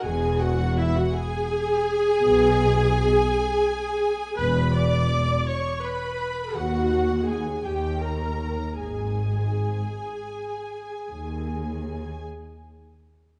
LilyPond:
<<
  \new Staff \with { instrumentName = "Violin section" } { \time 12/8 \key gis \minor \tempo 4. = 55 gis''8 fis''8 e''16 fis''16 gis''1~ gis''8 | b''8 d'''4 cis'''8 b''4 fis''4 gis''8 g''8 ais''4 | gis''1~ gis''8 r4. | }
  \new Staff \with { instrumentName = "Violin section" } { \time 12/8 \key gis \minor gis''8 fis''8 e''16 fis''16 gis''1~ gis''8 | b''8 d'''4 cis'''8 b''4 fis''4 gis''8 g''8 ais''4 | gis''1~ gis''8 r4. | }
  \new Staff \with { instrumentName = "Viola section" } { \time 12/8 \key gis \minor gis'8 fis'8 e'16 fis'16 gis'1~ gis'8 | b'8 d''4 cis''8 b'4 fis'4 gis'8 g'8 ais'4 | gis'1~ gis'8 r4. | }
  \new Staff \with { instrumentName = "Cello section" } { \clef bass \time 12/8 \key gis \minor e,4. r4. b,4. r4. | e,4. r4. dis,4. dis,4. | gis,4. r4. dis,4. r4. | }
  \new Staff \with { instrumentName = "Double bass section" } { \clef bass \time 12/8 \key gis \minor e,,4. r4. b,,4. r4. | e,,4. r4. dis,4. dis,4. | gis,,4. r4. dis,4. r4. | }
>>